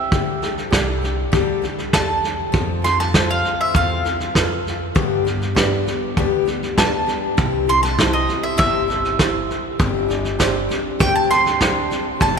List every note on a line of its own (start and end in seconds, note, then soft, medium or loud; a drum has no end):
0.00 0.14 C4 soft
0.00 0.13 E4 soft
0.00 0.12 C5 medium
0.00 0.69 E5 medium
0.11 0.55 D2 medium
0.11 0.43 D3 medium
0.11 0.43 G3 medium
0.11 0.43 D4 medium
0.11 0.43 G4 medium
0.11 0.41 A4 medium
0.11 kick loud
0.11 snare soft
0.42 0.71 D4 soft
0.42 0.72 G4 soft
0.42 0.72 A4 medium
0.42 snare soft
0.58 snare soft
0.71 1.24 C2 medium
0.71 1.02 G3 medium
0.71 1.02 D4 medium
0.71 1.10 G4 medium
0.71 1.02 G4 medium
0.71 1.11 A4 medium
0.71 1.11 D5 medium
0.71 kick medium
0.71 snare loud
0.71 hi-hat pedal medium
1.02 1.32 D4 soft
1.02 1.32 G4 medium
1.02 1.32 A4 medium
1.02 snare soft
1.32 1.84 D2 medium
1.32 1.62 D3 medium
1.32 1.63 G3 medium
1.32 1.63 D4 medium
1.32 1.62 G4 loud
1.32 1.61 A4 loud
1.32 kick loud
1.32 snare soft
1.62 2.53 D4 soft
1.62 2.54 G4 medium
1.62 2.53 A4 medium
1.62 snare soft
1.78 snare soft
1.93 2.45 E2 medium
1.93 2.32 G4 medium
1.93 2.32 A4 medium
1.93 2.32 D5 medium
1.93 2.81 A5 medium
1.93 kick medium
1.93 snare loud
1.93 hi-hat pedal medium
2.24 snare soft
2.52 3.40 F2 medium
2.52 2.83 F3 medium
2.52 2.84 C4 medium
2.52 2.83 F4 medium
2.52 2.81 A4 medium
2.52 kick loud
2.52 snare soft
2.82 3.13 C4 soft
2.82 3.14 F4 soft
2.82 3.13 A4 medium
2.82 2.98 C6 medium
2.82 snare soft
3.00 3.29 A5 medium
3.00 snare soft
3.13 3.74 F3 medium
3.13 3.74 C4 medium
3.13 3.53 F4 medium
3.13 3.74 F4 medium
3.13 3.53 A4 medium
3.13 3.75 A4 medium
3.13 3.53 C5 medium
3.13 kick medium
3.13 snare loud
3.13 hi-hat pedal medium
3.31 3.59 F5 medium
3.45 snare soft
3.61 3.74 E5 medium
3.74 4.26 E2 medium
3.74 4.05 C4 medium
3.74 4.05 F4 medium
3.74 4.03 A4 medium
3.74 4.93 F5 medium
3.74 kick loud
3.74 snare soft
4.04 4.96 C4 soft
4.04 4.96 F4 soft
4.04 4.95 A4 medium
4.04 snare soft
4.20 snare soft
4.34 4.87 F2 medium
4.34 4.73 F4 medium
4.34 4.74 A4 medium
4.34 4.74 B4 medium
4.34 kick medium
4.34 snare loud
4.34 hi-hat pedal medium
4.67 snare soft
4.95 5.26 G2 medium
4.95 5.82 G2 medium
4.95 5.25 D3 medium
4.95 5.26 G3 medium
4.95 5.26 B3 loud
4.95 5.25 D4 loud
4.95 5.23 G4 loud
4.95 kick loud
4.95 snare soft
5.25 5.55 B3 medium
5.25 5.56 D4 medium
5.25 5.56 G4 medium
5.25 snare soft
5.41 snare soft
5.55 5.86 G3 medium
5.55 5.86 B3 medium
5.55 5.95 D4 medium
5.55 5.87 D4 medium
5.55 5.95 G4 medium
5.55 5.85 G4 medium
5.55 5.95 B4 medium
5.55 kick medium
5.55 snare loud
5.55 hi-hat pedal medium
5.87 6.17 G3 soft
5.87 6.16 B3 soft
5.87 6.18 D4 soft
5.87 6.17 G4 soft
5.87 snare soft
6.17 7.03 D2 medium
6.17 6.47 G2 medium
6.17 6.47 D3 medium
6.17 6.47 G3 medium
6.17 6.46 B3 medium
6.17 6.45 D4 loud
6.17 6.44 G4 loud
6.17 kick loud
6.17 snare soft
6.45 7.09 G3 soft
6.45 7.07 B3 medium
6.45 7.07 D4 medium
6.45 7.06 G4 medium
6.45 snare soft
6.63 snare soft
6.76 7.16 D4 medium
6.76 7.16 G4 medium
6.76 7.17 B4 medium
6.76 7.66 A5 medium
6.76 kick medium
6.76 snare loud
6.76 hi-hat pedal medium
7.06 7.37 G3 soft
7.06 7.38 B3 soft
7.06 7.38 D4 medium
7.06 7.37 G4 soft
7.06 snare soft
7.37 8.24 C2 medium
7.37 7.68 C3 medium
7.37 7.68 G3 medium
7.37 7.68 C4 medium
7.37 7.67 E4 medium
7.37 7.66 G4 medium
7.37 kick loud
7.37 snare soft
7.67 7.98 C4 soft
7.67 7.98 E4 soft
7.67 7.98 G4 medium
7.67 7.82 C6 medium
7.67 snare soft
7.83 8.12 A5 medium
7.83 snare soft
7.97 8.28 G3 medium
7.97 8.29 C4 medium
7.97 8.37 E4 medium
7.97 8.29 E4 medium
7.97 8.37 G4 medium
7.97 8.27 G4 medium
7.97 8.37 C5 medium
7.97 kick medium
7.97 snare loud
7.97 hi-hat pedal medium
8.13 8.43 D#5 medium
8.28 8.57 C4 soft
8.28 8.57 E4 soft
8.28 8.58 G4 soft
8.28 snare soft
8.43 8.57 E5 medium
8.57 9.45 G1 medium
8.57 8.88 C3 medium
8.57 8.88 G3 medium
8.57 8.89 C4 medium
8.57 8.88 E4 medium
8.57 8.87 G4 medium
8.57 9.76 E5 loud
8.57 kick loud
8.57 snare soft
8.88 9.79 C4 soft
8.88 9.80 E4 soft
8.88 9.79 G4 medium
8.88 snare soft
9.05 snare soft
9.18 9.57 E4 medium
9.18 9.58 G4 medium
9.18 9.58 C5 medium
9.18 kick medium
9.18 snare loud
9.18 hi-hat pedal medium
9.50 snare soft
9.79 10.66 G1 medium
9.79 10.10 G2 medium
9.79 10.10 D3 medium
9.79 10.10 G3 medium
9.79 10.10 C4 medium
9.79 10.09 D4 loud
9.79 10.07 G4 loud
9.79 kick loud
9.79 snare soft
10.09 10.38 G3 soft
10.09 10.39 C4 medium
10.09 10.40 D4 medium
10.09 10.39 G4 medium
10.09 snare soft
10.25 snare soft
10.39 10.70 G3 medium
10.39 10.70 C4 medium
10.39 10.78 D4 medium
10.39 10.69 D4 medium
10.39 10.79 G4 medium
10.39 10.68 G4 medium
10.39 10.79 C5 medium
10.39 kick medium
10.39 snare loud
10.39 hi-hat pedal medium
10.69 10.99 G3 soft
10.69 11.00 C4 soft
10.69 11.00 D4 medium
10.69 11.00 G4 medium
10.69 snare soft
10.99 11.87 D2 medium
10.99 11.30 G2 medium
10.99 11.31 D3 medium
10.99 11.31 G3 medium
10.99 11.31 C4 medium
10.99 11.30 D4 medium
10.99 11.29 G4 medium
10.99 11.15 G5 medium
10.99 kick loud
10.99 snare soft
11.16 11.30 A5 medium
11.30 11.92 G3 soft
11.30 11.92 C4 soft
11.30 11.91 D4 soft
11.30 11.90 G4 medium
11.30 12.19 C6 loud
11.30 snare soft
11.46 snare soft
11.60 12.00 D4 medium
11.60 12.00 G4 medium
11.60 12.00 C5 medium
11.60 kick medium
11.60 snare loud
11.60 hi-hat pedal medium
11.91 12.20 G3 soft
11.91 12.21 C4 soft
11.91 12.20 D4 medium
11.91 12.21 G4 medium
11.91 snare soft
12.20 12.39 F1 medium
12.20 12.39 F3 medium
12.20 12.39 D4 medium
12.20 12.39 F4 medium
12.20 12.39 A4 medium
12.20 12.36 A5 medium
12.20 kick loud
12.20 snare soft